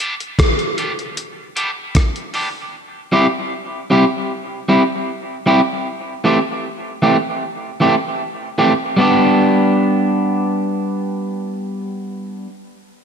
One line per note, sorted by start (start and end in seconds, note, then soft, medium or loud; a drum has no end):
0.00 0.13 G3 medium
0.00 0.13 B3 medium
0.00 0.14 D4 medium
0.00 0.14 G4 medium
0.00 closed hi-hat medium
0.20 closed hi-hat medium
0.39 kick loud
0.39 cross-stick loud
0.39 closed hi-hat medium
0.59 closed hi-hat soft
0.78 0.91 G3 medium
0.78 0.91 B3 medium
0.78 0.91 D4 medium
0.78 0.92 G4 medium
0.78 closed hi-hat medium
0.99 closed hi-hat soft
1.17 closed hi-hat medium
1.56 1.69 G3 medium
1.56 1.69 B3 medium
1.56 1.70 D4 medium
1.56 1.70 G4 medium
1.56 closed hi-hat medium
1.95 kick loud
1.95 cross-stick medium
1.95 closed hi-hat loud
2.16 closed hi-hat soft
2.34 2.47 G3 medium
2.34 2.48 B3 medium
2.34 2.48 D4 loud
2.34 2.48 G4 medium
2.34 open hi-hat medium
3.12 3.25 G3 medium
3.12 3.26 C4 medium
3.12 3.26 E4 loud
3.12 3.26 G4 loud
3.90 4.04 G3 medium
3.90 4.04 C4 medium
3.90 4.04 E4 medium
3.90 4.04 G4 loud
4.68 4.82 G3 medium
4.68 4.82 C4 medium
4.68 4.82 E4 medium
4.68 4.82 G4 medium
5.46 5.60 G3 medium
5.46 5.60 C4 medium
5.46 5.60 E4 loud
5.46 5.60 G4 loud
6.24 6.38 E3 medium
6.24 6.38 A3 medium
6.24 6.38 C4 medium
6.24 6.38 G4 medium
7.02 7.16 E3 medium
7.02 7.16 A3 medium
7.02 7.16 C4 medium
7.02 7.16 G4 medium
7.80 7.94 E3 medium
7.80 7.94 A3 medium
7.80 7.94 C4 medium
7.80 7.94 G4 medium
8.58 8.72 E3 medium
8.58 8.72 A3 medium
8.58 8.72 C4 medium
8.58 8.72 G4 medium
8.96 12.46 G3 medium
8.96 12.48 B3 medium
8.96 12.50 D4 medium
9.01 12.51 G4 medium